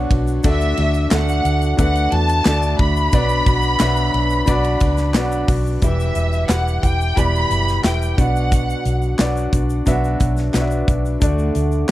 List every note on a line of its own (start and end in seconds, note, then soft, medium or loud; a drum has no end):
0.00 0.10 B2 medium
0.00 0.10 F#3 loud
0.00 0.11 B3 loud
0.00 0.43 D4 medium
0.00 0.44 F#4 medium
0.00 0.47 B4 medium
0.00 0.30 C#5 medium
0.00 0.45 D5 medium
0.00 0.46 E5 medium
0.00 0.12 F#5 medium
0.10 0.38 B1 loud
0.10 0.44 B3 medium
0.10 0.43 D4 medium
0.10 0.44 F#4 medium
0.10 kick medium
0.10 ride medium
0.27 shaker soft
0.43 0.72 D2 loud
0.43 0.78 D3 medium
0.43 1.41 D3 medium
0.43 0.77 A3 medium
0.43 0.96 D4 medium
0.43 0.77 D4 medium
0.43 0.97 F#4 medium
0.43 0.76 F#4 loud
0.43 0.97 A4 medium
0.43 0.97 D5 loud
0.43 1.08 E5 loud
0.43 kick loud
0.43 ride medium
0.43 shaker medium
0.61 shaker soft
0.77 1.06 D2 medium
0.77 1.10 A3 medium
0.77 1.11 D4 medium
0.77 1.11 F#4 medium
0.77 ride medium
0.94 shaker soft
1.11 1.39 D2 loud
1.11 1.77 D3 medium
1.11 1.77 A3 medium
1.11 1.64 D4 medium
1.11 1.79 D4 loud
1.11 1.64 F#4 medium
1.11 1.79 F#4 loud
1.11 1.64 A4 medium
1.11 1.64 E5 medium
1.11 1.75 F#5 medium
1.11 snare loud
1.11 clap loud
1.11 ride medium
1.11 shaker medium
1.29 shaker medium
1.45 1.73 D2 medium
1.45 ride medium
1.45 shaker medium
1.62 shaker soft
1.77 2.06 D2 medium
1.77 2.12 D3 medium
1.77 2.12 A3 medium
1.77 2.31 D4 medium
1.77 2.11 D4 medium
1.77 2.31 F#4 medium
1.77 2.10 F#4 medium
1.77 2.31 A4 medium
1.77 2.32 B4 medium
1.77 2.11 F#5 loud
1.77 kick medium
1.77 ride medium
1.77 shaker medium
1.95 ride soft
1.95 shaker soft
2.11 2.40 E2 loud
2.11 2.45 A3 medium
2.11 2.45 D4 medium
2.11 2.46 F#4 medium
2.11 2.80 A5 loud
2.11 ride medium
2.29 ride soft
2.29 shaker medium
2.45 2.74 D2 loud
2.45 2.79 D3 medium
2.45 2.80 A3 medium
2.45 2.98 D4 medium
2.45 2.79 D4 loud
2.45 2.98 F#4 medium
2.45 2.78 F#4 medium
2.45 2.98 A4 medium
2.45 2.99 D5 medium
2.45 snare loud
2.45 clap medium
2.45 ride medium
2.45 shaker medium
2.62 shaker medium
2.79 3.07 D2 medium
2.79 3.13 A3 medium
2.79 3.13 D4 medium
2.79 3.13 F#4 medium
2.79 5.45 B5 loud
2.79 kick loud
2.79 ride medium
2.96 shaker soft
3.12 3.41 B1 loud
3.12 4.10 B2 medium
3.12 3.47 B2 medium
3.12 3.47 F#3 medium
3.12 3.47 B3 loud
3.12 3.65 D4 medium
3.12 3.46 D4 medium
3.12 3.65 F#4 medium
3.12 3.45 F#4 loud
3.12 3.66 B4 medium
3.12 3.66 D5 loud
3.12 kick loud
3.12 ride medium
3.12 shaker medium
3.29 shaker soft
3.46 3.74 B1 loud
3.46 3.79 B3 medium
3.46 3.79 D4 medium
3.46 3.80 F#4 medium
3.46 kick loud
3.46 ride medium
3.46 shaker soft
3.62 shaker soft
3.79 4.08 B1 medium
3.79 4.47 B2 medium
3.79 4.46 F#3 medium
3.79 4.48 B3 loud
3.79 4.33 D4 medium
3.79 4.47 D4 loud
3.79 4.33 F#4 medium
3.79 4.48 F#4 loud
3.79 4.33 B4 medium
3.79 4.33 E5 loud
3.79 snare loud
3.79 clap loud
3.79 ride medium
3.79 shaker medium
3.96 shaker medium
4.14 4.42 B1 medium
4.14 ride medium
4.30 shaker soft
4.46 4.75 B1 loud
4.46 4.81 F#3 medium
4.46 4.82 B3 medium
4.46 5.00 D4 loud
4.46 4.81 D4 medium
4.46 5.00 F#4 medium
4.46 4.80 F#4 medium
4.46 5.00 B4 medium
4.46 5.00 D5 loud
4.46 kick medium
4.46 ride medium
4.46 shaker medium
4.64 ride soft
4.64 shaker soft
4.80 5.15 C#2 medium
4.80 5.15 B3 soft
4.80 5.15 D4 medium
4.80 5.15 F#4 medium
4.80 kick medium
4.80 ride medium
4.80 shaker medium
4.97 snare soft
4.97 shaker medium
5.14 5.43 B1 medium
5.14 5.49 B2 medium
5.14 5.49 F#3 medium
5.14 5.49 B3 medium
5.14 5.67 D4 medium
5.14 5.48 D4 loud
5.14 5.67 F#4 medium
5.14 5.47 F#4 medium
5.14 5.68 B4 medium
5.14 5.68 D5 medium
5.14 snare loud
5.14 clap medium
5.14 ride medium
5.14 shaker medium
5.32 shaker medium
5.48 5.76 B1 loud
5.48 5.83 B3 medium
5.48 5.83 D4 medium
5.48 5.82 F#4 medium
5.48 kick loud
5.48 open hi-hat medium
5.48 ride medium
5.48 shaker soft
5.67 shaker soft
5.82 6.10 E1 loud
5.82 6.50 E2 medium
5.82 6.50 B2 medium
5.82 6.80 E3 medium
5.82 6.48 E3 medium
5.82 6.48 G3 medium
5.82 6.35 E4 medium
5.82 6.49 E4 loud
5.82 6.35 G4 medium
5.82 6.50 G4 medium
5.82 6.35 B4 medium
5.82 6.46 E5 medium
5.82 6.36 E5 medium
5.82 kick medium
5.82 closed hi-hat loud
5.82 shaker medium
6.00 shaker soft
6.15 6.43 E1 medium
6.15 closed hi-hat medium
6.15 shaker soft
6.33 shaker soft
6.49 6.77 E1 medium
6.49 6.83 E3 medium
6.49 6.83 G3 medium
6.49 7.02 E4 medium
6.49 6.82 E4 medium
6.49 7.02 G4 medium
6.49 6.81 G4 medium
6.49 7.02 B4 medium
6.49 6.84 F#5 medium
6.49 7.03 F#5 medium
6.49 snare loud
6.49 clap medium
6.49 closed hi-hat medium
6.49 shaker medium
6.68 shaker medium
6.83 7.11 E1 medium
6.83 7.16 E3 soft
6.83 7.16 G3 soft
6.83 7.16 E4 medium
6.83 7.16 G4 medium
6.83 7.17 G5 medium
6.83 kick medium
6.83 closed hi-hat medium
6.83 shaker soft
7.01 shaker soft
7.16 7.45 E1 medium
7.16 7.84 E2 loud
7.16 7.84 B2 medium
7.16 7.82 E3 medium
7.16 7.83 G3 medium
7.16 7.69 E4 medium
7.16 7.84 E4 medium
7.16 7.69 G4 medium
7.16 7.84 G4 loud
7.16 7.70 B4 medium
7.16 7.70 D5 medium
7.16 7.84 B5 loud
7.16 kick medium
7.16 closed hi-hat medium
7.16 shaker medium
7.35 shaker soft
7.50 7.78 F#1 medium
7.50 closed hi-hat medium
7.50 shaker soft
7.68 snare soft
7.68 shaker soft
7.83 8.12 E1 medium
7.83 8.18 E3 medium
7.83 8.18 G3 medium
7.83 8.18 E4 medium
7.83 8.18 G4 medium
7.83 8.17 G4 medium
7.83 8.17 B4 medium
7.83 8.19 E5 medium
7.83 8.16 G5 medium
7.83 snare loud
7.83 clap medium
7.83 closed hi-hat medium
7.83 shaker medium
8.02 shaker medium
8.17 8.73 B1 medium
8.17 9.15 B2 medium
8.17 9.20 B2 medium
8.17 9.18 F#3 medium
8.17 9.18 B3 medium
8.17 8.99 D4 medium
8.17 9.20 D4 medium
8.17 9.20 F#4 medium
8.17 8.99 F#4 medium
8.17 8.99 B4 medium
8.17 9.00 D5 medium
8.17 9.19 F#5 medium
8.17 kick medium
8.17 closed hi-hat medium
8.36 shaker soft
8.52 kick medium
8.52 closed hi-hat medium
8.52 shaker medium
8.70 shaker soft
8.85 9.13 B1 medium
8.85 closed hi-hat medium
8.85 shaker soft
9.02 shaker soft
9.18 9.47 B1 medium
9.18 9.53 F#3 medium
9.18 9.53 B3 medium
9.18 9.71 D4 medium
9.18 9.52 D4 medium
9.18 9.72 F#4 medium
9.18 9.52 F#4 medium
9.18 9.72 B4 medium
9.18 9.72 D5 medium
9.18 snare loud
9.18 clap medium
9.18 closed hi-hat medium
9.18 shaker medium
9.37 shaker medium
9.53 9.80 B1 medium
9.53 9.86 B3 soft
9.53 9.86 D4 medium
9.53 9.87 F#4 medium
9.53 kick medium
9.53 closed hi-hat medium
9.53 shaker medium
9.70 shaker soft
9.86 10.14 B1 loud
9.86 10.54 B2 medium
9.86 10.53 F#3 medium
9.86 10.53 B3 loud
9.86 10.39 D4 loud
9.86 10.55 D4 medium
9.86 10.39 F#4 medium
9.86 10.55 F#4 loud
9.86 10.39 B4 medium
9.86 10.40 E5 loud
9.86 kick medium
9.86 closed hi-hat medium
9.86 shaker medium
10.04 shaker soft
10.20 10.48 B1 medium
10.20 kick medium
10.20 closed hi-hat medium
10.20 shaker soft
10.37 snare soft
10.37 shaker soft
10.53 10.82 B1 medium
10.53 10.88 F#3 medium
10.53 10.88 B3 medium
10.53 11.06 D4 medium
10.53 10.87 D4 medium
10.53 11.06 F#4 medium
10.53 10.86 F#4 medium
10.53 11.07 B4 medium
10.53 10.61 D5 medium
10.53 snare loud
10.53 clap medium
10.53 closed hi-hat medium
10.53 shaker medium
10.61 11.10 E5 medium
10.71 shaker medium
10.88 11.15 B1 medium
10.88 11.21 B3 soft
10.88 11.21 D4 medium
10.88 11.21 F#4 medium
10.88 kick medium
10.88 closed hi-hat medium
11.05 shaker soft
11.20 11.49 D2 loud
11.20 11.88 D3 medium
11.20 11.91 D3 medium
11.20 11.88 A3 medium
11.20 11.73 D4 medium
11.20 11.89 D4 loud
11.20 11.74 F#4 medium
11.20 11.89 F#4 loud
11.20 11.74 A4 medium
11.20 11.74 D5 medium
11.20 kick loud
11.20 closed hi-hat loud
11.20 shaker medium
11.39 shaker soft
11.55 11.83 D2 loud
11.55 closed hi-hat medium
11.55 shaker soft
11.72 shaker soft
11.88 11.91 D4 medium